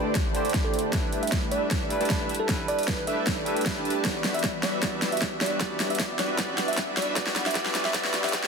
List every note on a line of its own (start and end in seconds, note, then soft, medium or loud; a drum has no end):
0.00 0.33 D3 medium
0.00 0.23 A3 loud
0.00 0.23 D4 medium
0.00 0.34 D4 medium
0.00 0.35 E4 medium
0.00 0.23 G4 medium
0.00 0.36 G4 medium
0.00 0.12 B4 medium
0.00 0.23 C5 medium
0.00 0.37 C5 loud
0.00 0.23 D5 loud
0.15 kick loud
0.15 snare medium
0.15 closed hi-hat medium
0.25 0.91 A3 medium
0.25 0.91 D4 medium
0.25 0.91 G4 medium
0.25 0.91 C5 medium
0.25 0.91 D5 loud
0.33 0.90 D3 medium
0.33 0.90 D4 medium
0.33 0.91 E4 medium
0.33 0.91 G4 medium
0.33 0.92 C5 loud
0.33 closed hi-hat medium
0.45 closed hi-hat soft
0.49 closed hi-hat medium
0.54 kick loud
0.54 snare medium
0.54 closed hi-hat medium
0.64 0.97 A4 medium
0.74 closed hi-hat soft
0.79 closed hi-hat medium
0.91 1.87 G3 loud
0.91 1.49 A3 medium
0.91 1.88 D4 medium
0.91 1.49 D4 medium
0.91 1.88 E4 medium
0.91 1.49 G4 medium
0.91 1.89 A4 medium
0.91 1.49 B4 medium
0.91 1.89 B4 loud
0.91 1.49 E5 medium
0.91 kick loud
0.91 snare medium
0.91 closed hi-hat medium
1.13 closed hi-hat medium
1.23 1.39 E5 medium
1.23 closed hi-hat soft
1.27 closed hi-hat medium
1.32 kick loud
1.32 snare medium
1.32 closed hi-hat medium
1.51 1.79 A3 medium
1.51 1.79 D4 medium
1.51 1.79 G4 medium
1.51 1.79 B4 medium
1.51 2.06 D5 medium
1.51 1.79 E5 loud
1.51 closed hi-hat medium
1.71 kick loud
1.71 snare medium
1.71 closed hi-hat medium
1.81 1.93 A3 medium
1.81 1.93 D4 medium
1.81 1.93 G4 medium
1.81 1.93 B4 medium
1.81 1.93 E5 medium
1.88 2.46 G3 medium
1.88 2.46 D4 medium
1.88 2.47 E4 medium
1.88 2.47 A4 medium
1.88 2.48 B4 loud
1.88 closed hi-hat medium
2.01 2.18 A3 loud
2.01 2.18 D4 medium
2.01 2.18 G4 medium
2.01 2.18 B4 medium
2.01 2.18 A5 loud
2.01 closed hi-hat soft
2.05 closed hi-hat medium
2.10 kick loud
2.10 snare medium
2.10 closed hi-hat medium
2.20 2.32 A3 medium
2.20 2.32 D4 medium
2.20 2.32 G4 medium
2.20 2.32 B4 medium
2.20 2.32 E5 loud
2.29 closed hi-hat soft
2.35 closed hi-hat medium
2.39 2.47 A4 medium
2.47 3.43 G3 loud
2.47 3.44 D4 medium
2.47 3.44 E4 medium
2.47 3.45 A4 medium
2.47 3.45 B4 loud
2.47 kick loud
2.47 snare medium
2.47 closed hi-hat medium
2.68 2.85 D5 medium
2.68 closed hi-hat medium
2.79 closed hi-hat soft
2.83 closed hi-hat medium
2.88 3.05 B4 medium
2.88 kick loud
2.88 snare medium
2.88 closed hi-hat medium
3.07 3.35 A3 loud
3.07 3.35 D4 medium
3.07 3.35 G4 medium
3.07 3.35 B4 medium
3.07 3.35 E5 loud
3.07 3.37 E5 medium
3.07 closed hi-hat medium
3.27 kick loud
3.27 snare medium
3.27 closed hi-hat medium
3.37 3.44 A3 medium
3.37 3.44 D4 medium
3.37 3.44 G4 medium
3.37 3.44 B4 medium
3.37 3.44 D5 loud
3.44 4.02 G3 medium
3.44 3.74 A3 medium
3.44 4.02 D4 medium
3.44 3.74 D4 medium
3.44 4.03 E4 medium
3.44 3.74 G4 medium
3.44 4.03 A4 medium
3.44 3.74 B4 medium
3.44 3.74 E5 medium
3.44 closed hi-hat medium
3.48 4.04 B4 loud
3.57 closed hi-hat soft
3.61 closed hi-hat medium
3.66 kick loud
3.66 snare medium
3.66 closed hi-hat medium
3.76 4.03 A3 medium
3.76 4.03 D4 medium
3.76 4.03 G4 medium
3.76 4.03 B4 medium
3.76 4.03 A5 loud
3.85 closed hi-hat soft
3.90 closed hi-hat medium
4.03 4.79 E3 medium
4.03 4.61 G3 medium
4.03 4.82 G3 medium
4.03 4.80 B3 medium
4.03 4.61 D4 medium
4.03 4.61 F#4 medium
4.03 4.81 F#4 medium
4.03 4.61 B4 medium
4.03 4.82 D5 loud
4.03 4.61 E5 medium
4.03 kick loud
4.03 snare medium
4.03 closed hi-hat medium
4.03 riser medium
4.24 snare medium
4.24 closed hi-hat medium
4.34 4.51 E5 medium
4.34 closed hi-hat soft
4.39 closed hi-hat medium
4.44 kick loud
4.44 snare medium
4.44 closed hi-hat medium
4.63 4.81 G3 medium
4.63 4.81 D4 medium
4.63 4.81 F#4 medium
4.63 4.81 B4 medium
4.63 4.81 D5 medium
4.63 4.81 E5 medium
4.63 snare medium
4.63 closed hi-hat medium
4.81 5.57 E3 medium
4.81 5.39 G3 medium
4.81 5.60 G3 medium
4.81 5.58 B3 medium
4.81 5.39 D4 medium
4.81 5.39 F#4 medium
4.81 5.59 F#4 medium
4.81 5.39 B4 medium
4.81 5.39 E5 medium
4.81 kick loud
4.81 snare medium
4.81 closed hi-hat medium
4.85 5.60 D5 medium
5.02 snare medium
5.02 closed hi-hat medium
5.12 5.29 E5 medium
5.12 closed hi-hat soft
5.17 closed hi-hat medium
5.22 kick loud
5.22 snare medium
5.22 closed hi-hat medium
5.41 5.59 G3 medium
5.41 5.59 D4 medium
5.41 5.59 F#4 medium
5.41 5.59 B4 medium
5.41 5.59 D5 medium
5.41 5.59 E5 medium
5.41 snare medium
5.41 closed hi-hat soft
5.46 closed hi-hat medium
5.59 6.35 E3 medium
5.59 6.17 G3 medium
5.59 6.38 G3 medium
5.59 6.36 B3 medium
5.59 6.17 D4 medium
5.59 6.17 F#4 medium
5.59 6.37 F#4 medium
5.59 6.17 B4 medium
5.59 6.38 D5 loud
5.59 6.17 E5 medium
5.59 kick loud
5.59 snare medium
5.59 closed hi-hat medium
5.80 snare medium
5.80 closed hi-hat medium
5.90 6.07 E5 medium
5.90 closed hi-hat soft
5.95 closed hi-hat medium
6.00 kick loud
6.00 snare medium
6.00 closed hi-hat medium
6.19 6.37 G3 medium
6.19 6.37 D4 medium
6.19 6.37 F#4 medium
6.19 6.37 B4 medium
6.19 6.37 D5 medium
6.19 6.37 E5 medium
6.19 snare medium
6.19 closed hi-hat medium
6.36 7.13 E3 medium
6.36 6.95 G3 medium
6.36 7.15 G3 medium
6.36 7.14 B3 medium
6.36 6.95 D4 medium
6.36 7.15 F#4 medium
6.36 6.95 F#4 medium
6.36 6.95 B4 medium
6.36 6.95 E5 medium
6.36 kick loud
6.36 snare medium
6.36 closed hi-hat medium
6.40 7.16 D5 loud
6.58 snare medium
6.58 closed hi-hat medium
6.68 6.85 E5 medium
6.68 closed hi-hat soft
6.73 closed hi-hat medium
6.77 kick loud
6.77 snare medium
6.77 closed hi-hat medium
6.97 7.15 G3 medium
6.97 7.15 D4 medium
6.97 7.15 F#4 medium
6.97 7.15 B4 medium
6.97 7.15 D5 medium
6.97 7.15 E5 medium
6.97 snare medium
6.97 closed hi-hat medium
7.02 closed hi-hat medium
7.14 7.52 E3 loud
7.14 7.54 G3 medium
7.14 7.53 B3 medium
7.14 7.54 D4 medium
7.14 7.54 F#4 medium
7.14 7.54 B4 medium
7.14 7.54 E5 medium
7.14 kick loud
7.14 snare medium
7.14 closed hi-hat medium
7.18 7.55 D5 loud
7.27 snare medium
7.36 snare medium
7.36 closed hi-hat medium
7.46 7.54 E5 medium
7.46 snare medium
7.46 closed hi-hat medium
7.51 7.91 E3 loud
7.51 7.92 B3 medium
7.51 closed hi-hat medium
7.55 7.93 G3 medium
7.55 7.93 D4 medium
7.55 7.93 F#4 medium
7.55 7.93 B4 medium
7.55 7.94 D5 loud
7.55 7.93 E5 medium
7.55 kick loud
7.55 snare medium
7.55 closed hi-hat medium
7.66 snare medium
7.75 snare loud
7.75 closed hi-hat medium
7.85 7.93 E5 loud
7.85 snare medium
7.92 8.30 E3 medium
7.92 8.32 G3 medium
7.92 8.31 B3 medium
7.92 8.32 D4 medium
7.92 8.32 F#4 medium
7.92 8.32 B4 medium
7.92 8.33 D5 loud
7.92 8.32 E5 medium
7.92 kick loud
7.92 snare loud
7.92 closed hi-hat medium
8.05 snare medium
8.14 snare medium
8.14 closed hi-hat medium
8.24 8.32 E5 medium
8.24 snare medium
8.24 closed hi-hat soft
8.29 8.47 E3 loud
8.29 8.47 B3 medium
8.29 closed hi-hat medium
8.33 8.47 G3 medium
8.33 8.47 D4 medium
8.33 8.47 F#4 medium
8.33 8.47 B4 medium
8.33 8.47 D5 loud
8.33 8.47 E5 medium
8.33 kick loud
8.33 snare loud
8.33 closed hi-hat medium
8.44 snare medium